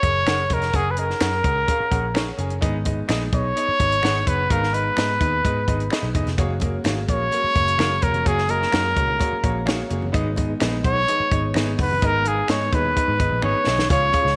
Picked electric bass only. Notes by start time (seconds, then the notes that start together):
0.03 F#1
0.27 F#1
0.50 F1
0.74 F#1
1.21 F#2
1.44 C#2
1.80 muted picked electric bass stroke
1.92 A#1
2.38 F#1
2.63 G#1
3.09 A#1
3.33 B1
3.68 muted picked electric bass stroke
3.80 G#1
4.03 G#1
4.27 F#1
4.50 G#1
4.98 G#2
5.21 D#2
5.45 G#2
5.68 G#1
6.03 B1
6.15 F#1
6.26 F1
6.38 F#1
6.85 G#1
7.08 A#1
7.44 muted picked electric bass stroke
7.56 F#1
7.79 F#1
8.03 F1
8.26 F#1
8.73 F#2
8.96 C#2
9.33 muted picked electric bass stroke
9.44 A#1
9.91 F#1
10.14 G#1
10.61 A#1
10.85 B1
11.20 muted picked electric bass stroke
11.32 G#1
11.56 G#1
11.79 F#1
12.02 G#1
12.49 G#2
12.73 D#2
13.08 G#2
13.20 G#1
13.31 A#1
13.43 G#1
13.67 B1
13.90 C#2
14.25 C#2